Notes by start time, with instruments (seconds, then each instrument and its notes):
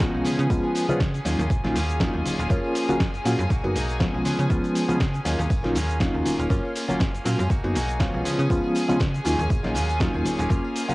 Already playing: violin section G#4 G#5
0.00 reed electric piano F3 G#3 B3 C#4 F4, clean electric guitar F#3 A#3 F#4, kick, snare, closed hi-hat, tambourine, cabasa
0.14 fm bass B1, tambourine
0.25 fm bass C#3, clean electric guitar F3 B3 C#4 G#4, open hi-hat, tambourine, high conga, cabasa
0.39 fm bass C#3, closed hi-hat, cabasa
0.50 fm bass C#2, reed electric piano F3 G#3 B3 C#4 F4, kick, closed hi-hat, tambourine, cabasa
0.63 clean electric guitar B3 C#4 G#4, tambourine
0.75 open hi-hat, tambourine, cabasa
0.88 fm bass C#3, reed electric piano F3 G#3 B3 C#4 F4, clean electric guitar B3 C#4 G#4, closed hi-hat, tambourine, high conga, cabasa
1.00 fm bass C#3, clean electric guitar F3 B3 C#4 G#4, kick, snare, closed hi-hat, tambourine, cabasa
1.14 clean electric guitar B3 C#4 G#4, closed hi-hat, tambourine, cabasa
1.25 fm bass D#2, clean electric guitar F#3 A#3 C#4 F4, reed electric piano F#3 A#3 C#4 D#4 F4, open hi-hat, tambourine, cabasa
1.38 fm bass D#2, closed hi-hat, tambourine, low conga, cabasa
1.50 fm bass A#1, kick, closed hi-hat, tambourine, cabasa
1.64 fm bass A#1, reed electric piano F#3 A#3 C#4 D#4 F4, clean electric guitar A#3 C#4 F4, snare, closed hi-hat, tambourine, high conga
1.75 fm bass D#2, clean electric guitar F#3 A#3 C#4 F4, open hi-hat, tambourine, low conga, cabasa
1.89 closed hi-hat, tambourine, cabasa
2.00 clean electric guitar F#3, reed electric piano F#3 A#3 C#4 D#4 F4, kick, snare, closed hi-hat, tambourine, cabasa
2.13 fm bass D#2, clean electric guitar A#3 C#4 F4, tambourine, low conga
2.25 fm bass D#1, open hi-hat, tambourine, high conga, cabasa
2.38 fm bass D#1, clean electric guitar A#3 C#4 F4, closed hi-hat, tambourine, cabasa
2.50 fm bass F#2, clean electric guitar F3 A#3 C#4 F4, reed electric piano A#3 C#4 F4, kick, closed hi-hat, tambourine, cabasa
2.64 tambourine
2.75 open hi-hat, tambourine, cabasa
2.88 fm bass F#1, reed electric piano F#3 A#3 C#4 F4 F#4, clean electric guitar A#3 C#4 F4, closed hi-hat, tambourine, high conga, cabasa
3.00 fm bass F#1, clean electric guitar F3 A#3 C#4 F4, kick, snare, closed hi-hat, tambourine, cabasa
3.13 clean electric guitar A#3 C#4 F4, closed hi-hat, tambourine, cabasa
3.24 fm bass A#2, clean electric guitar F3 A#3 C#4 F4, reed electric piano F#3 A#3 C#4 F4 F#4, open hi-hat, tambourine, cabasa
3.38 fm bass F#2, closed hi-hat, tambourine, low conga, cabasa
3.50 fm bass B1, clean electric guitar F#3 A#3 D#4 F#4, kick, closed hi-hat, tambourine, cabasa
3.63 fm bass F#2, reed electric piano F#3 A#3 B3 D#4 F#4, clean electric guitar A#3 D#4 F#4, closed hi-hat, tambourine, high conga
3.75 fm bass B1, clean electric guitar F#3 A#3 D#4 F#4, open hi-hat, tambourine, low conga, cabasa
3.88 closed hi-hat, tambourine, cabasa
4.00 reed electric piano F3 G#3 B3 C#4 F4, clean electric guitar F#3 A#3 D#4 F#4, kick, snare, closed hi-hat, tambourine, cabasa
4.13 fm bass B1, clean electric guitar A#3 D#4 F#4, tambourine
4.25 fm bass C#3, clean electric guitar F3 B3 C#4 G#4, open hi-hat, tambourine, high conga, cabasa
4.39 fm bass C#3, closed hi-hat, tambourine, cabasa
4.50 fm bass C#2, reed electric piano F3 G#3 B3 C#4 F4, kick, closed hi-hat, tambourine, cabasa
4.64 closed hi-hat, tambourine, cabasa
4.75 open hi-hat, tambourine, cabasa
4.88 fm bass C#3, reed electric piano F3 G#3 B3 C#4 F4, clean electric guitar B3 C#4 G#4, closed hi-hat, tambourine, high conga, cabasa
5.00 fm bass C#3, clean electric guitar B3 G#4, kick, snare, closed hi-hat, tambourine, cabasa
5.13 clean electric guitar B3 C#4 G#4, closed hi-hat, tambourine, cabasa
5.25 fm bass D#2, clean electric guitar F#3 A#3 C#4 F4, reed electric piano F#3 A#3 C#4 D#4 F4, open hi-hat, tambourine, cabasa
5.39 fm bass D#2, closed hi-hat, tambourine, low conga, cabasa
5.50 fm bass A#1, kick, closed hi-hat, tambourine, cabasa
5.63 fm bass A#1, reed electric piano F#3 A#3 C#4 D#4 F4, clean electric guitar A#3 C#4 F4, snare, closed hi-hat, tambourine, high conga
5.75 fm bass D#2, clean electric guitar F#3 A#3 C#4 F4, open hi-hat, tambourine, low conga, cabasa
5.89 closed hi-hat, tambourine, cabasa
6.00 reed electric piano F#3 A#3 C#4 D#4 F4, clean electric guitar C#4 F4, kick, snare, closed hi-hat, tambourine, cabasa
6.14 fm bass D#2, tambourine, low conga
6.25 fm bass D#1, open hi-hat, tambourine, high conga, cabasa
6.38 fm bass D#1, clean electric guitar A#3 C#4 F4, closed hi-hat, tambourine, cabasa
6.50 fm bass F#2, clean electric guitar F3 A#3 C#4 F4, reed electric piano A#3 C#4 F4, violin section G#4 G#5, kick, closed hi-hat, tambourine, cabasa
6.63 clean electric guitar A#3 C#4 F4, tambourine
6.75 open hi-hat, tambourine, cabasa
6.88 fm bass F#1, reed electric piano F#3 A#3 C#4 F4 F#4, clean electric guitar A#3 C#4 F4, closed hi-hat, tambourine, high conga, cabasa
6.99 fm bass F#1, clean electric guitar F3 A#3 C#4 F4, kick, snare, closed hi-hat, tambourine, cabasa
7.13 clean electric guitar A#3 C#4 F4, closed hi-hat, tambourine, cabasa
7.24 fm bass A#2, clean electric guitar F3 A#3 C#4 F4, reed electric piano F#3 A#3 C#4 F4 F#4, open hi-hat, tambourine, cabasa
7.39 fm bass F#2, closed hi-hat, tambourine, low conga, cabasa
7.49 fm bass B1, clean electric guitar F#3 A#3 D#4 F#4, kick, closed hi-hat, tambourine, cabasa
7.63 fm bass F#2, reed electric piano F#3 A#3 B3 D#4 F#4, clean electric guitar A#3 D#4 F#4, closed hi-hat, tambourine, high conga
7.74 fm bass B1, clean electric guitar F#3 A#3 D#4 F#4, open hi-hat, tambourine, low conga, cabasa
7.89 closed hi-hat, tambourine, cabasa
7.99 reed electric piano F3 G#3 B3 C#4 F4, clean electric guitar F#3 A#3 D#4 F#4, kick, snare, closed hi-hat, tambourine, cabasa
8.14 fm bass B1, tambourine
8.24 fm bass C#3, clean electric guitar F3 B3 C#4 G#4, open hi-hat, tambourine, high conga, cabasa
8.39 fm bass C#3, closed hi-hat, tambourine, cabasa
8.50 fm bass C#2, reed electric piano F3 G#3 B3 C#4 F4, kick, closed hi-hat, tambourine, cabasa
8.63 clean electric guitar B3 C#4 G#4, tambourine
8.75 open hi-hat, tambourine, cabasa
8.88 fm bass C#3, reed electric piano F3 G#3 B3 C#4 F4, clean electric guitar B3 C#4 G#4, closed hi-hat, tambourine, high conga, cabasa
8.99 fm bass C#3, clean electric guitar F3 B3 C#4 G#4, kick, snare, closed hi-hat, tambourine, cabasa
9.13 clean electric guitar B3 C#4 G#4, closed hi-hat, tambourine, cabasa
9.24 fm bass D#2, clean electric guitar F#3 A#3 C#4 F4, reed electric piano F#3 A#3 C#4 D#4 F4, open hi-hat, tambourine, cabasa
9.39 fm bass D#2, closed hi-hat, tambourine, low conga, cabasa
9.50 fm bass A#1, kick, closed hi-hat, tambourine, cabasa
9.63 fm bass A#1, reed electric piano F#3 A#3 C#4 D#4 F4, clean electric guitar A#3 C#4 F4, snare, closed hi-hat, tambourine, high conga
9.74 fm bass D#2, clean electric guitar F#3 A#3 C#4 F4, open hi-hat, tambourine, low conga, cabasa
9.89 closed hi-hat, tambourine, cabasa
9.99 clean electric guitar F#3 A#3 C#4 F4, reed electric piano F#3 A#3 C#4 D#4 F4, kick, snare, closed hi-hat, tambourine, cabasa
10.13 fm bass D#2, clean electric guitar A#3 C#4 F4, tambourine, low conga
10.25 fm bass D#1, open hi-hat, tambourine, high conga, cabasa
10.38 fm bass D#1, clean electric guitar A#3 C#4 F4, closed hi-hat, tambourine, cabasa
10.49 fm bass F#2, clean electric guitar F3 A#3 C#4 F4, reed electric piano A#3 C#4 F4, kick, closed hi-hat, tambourine, cabasa
10.63 clean electric guitar A#3 C#4 F4, tambourine
10.76 open hi-hat, tambourine, cabasa
10.88 fm bass F#1, reed electric piano F#3 A#3 C#4 F4 F#4, clean electric guitar A#3 C#4 F4, closed hi-hat, tambourine, high conga, cabasa